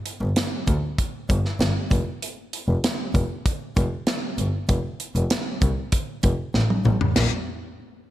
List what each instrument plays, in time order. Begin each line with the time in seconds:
0.06 closed hi-hat
0.21 double bass G1
0.36 snare, closed hi-hat
0.68 double bass D2, kick, closed hi-hat
0.98 kick, closed hi-hat
1.30 double bass G1, kick, closed hi-hat
1.45 snare
1.60 double bass G1, snare, closed hi-hat
1.91 double bass F1, kick, closed hi-hat
2.22 closed hi-hat
2.53 closed hi-hat
2.68 double bass F1
2.84 snare, closed hi-hat
3.15 double bass F1, kick, closed hi-hat
3.46 kick, closed hi-hat
3.77 double bass F1, kick, closed hi-hat
4.07 snare, closed hi-hat
4.38 double bass G1, closed hi-hat
4.69 double bass F1, kick, closed hi-hat
5.00 closed hi-hat
5.16 double bass F1, closed hi-hat
5.30 snare, closed hi-hat
5.62 double bass C2, kick, closed hi-hat
5.92 kick, closed hi-hat
6.23 double bass F1, kick, closed hi-hat
6.54 double bass A1, snare
6.70 high tom
6.85 double bass A1, mid tom
7.01 floor tom
7.16 double bass A#1, snare, crash